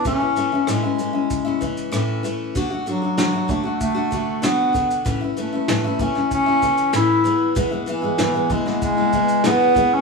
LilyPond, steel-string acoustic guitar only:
\new Staff \with { instrumentName = "Steel-string acoustic guitar" } { \time 4/4 \key a \major \tempo 4 = 96 <a, e a cis' e'>16 <a cis' e'>16 <e a cis' e'>16 <a cis' e'>16 <a, e a cis' e'>16 <a cis' e'>16 <e a cis' e'>16 <cis' e'>8 <a cis' e'>16 <e cis' e'>8 <a, e a cis' e'>8 <e a cis' e'>8 | <d a d' fis'>16 <a d' fis'>16 <d a d' fis'>16 <a d' fis'>16 <d a d' fis'>16 <a d' fis'>16 <d a d' fis'>16 <a d' fis'>8 <a d' fis'>16 <d a d' fis'>8 <d a d' fis'>8 <d a d' fis'>8 | <a, e a cis' e'>16 <a cis' e'>16 <e a cis' e'>16 <a cis' e'>16 <a, e a cis' e'>16 <a cis' e'>16 <e a cis' e'>16 <a cis' e'>8 <a cis' e'>16 <e a cis' e'>8 <a, e a cis' e'>8 <e gis b e'>8 | <e, b, e gis b e'>16 <e gis b e'>16 <e gis b e'>16 <e gis b e'>16 <e, b, e gis b e'>16 <e gis b e'>16 <e gis b e'>16 <e gis b e'>8 <e gis b e'>16 <e gis b e'>8 <e, b, e gis b e'>8 <e gis b e'>8 | }